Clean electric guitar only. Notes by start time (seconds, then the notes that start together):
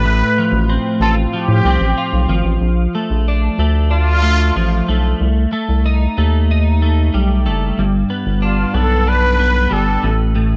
0.05 A2
0.38 F3
0.69 C4
1.02 F4
1.33 F3
1.66 C4
1.98 F4
2.29 F3
2.95 A3
3.28 D4
3.59 A3
3.91 D4
4.22 A3
4.56 F3
4.89 A3
5.53 A3
5.86 D#4
6.18 A3
6.51 D#4
6.82 A3
7.14 G3
7.46 A3
7.79 G2
8.10 B3
8.42 D4
8.74 B3
9.07 D4
9.39 B3
9.70 G3
10.03 A2
10.35 A2